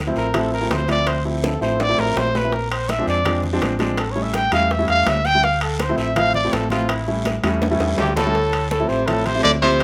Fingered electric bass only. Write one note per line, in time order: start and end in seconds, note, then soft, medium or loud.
0.00 0.10 D2 medium
0.16 0.67 A1 medium
0.70 1.56 D2 medium
1.61 1.95 A1 medium
1.98 2.15 A1 medium
2.16 3.01 A#1 medium
3.07 3.58 F2 medium
3.61 4.47 A1 medium
4.52 4.86 E2 medium
4.88 5.06 E2 medium
5.07 5.92 D2 medium
5.97 6.48 A1 medium
6.52 7.38 A1 medium
7.43 7.77 E2 medium
7.80 7.97 E2 medium
7.98 8.84 D2 loud
8.89 9.40 A1 medium
9.44 9.84 D2 medium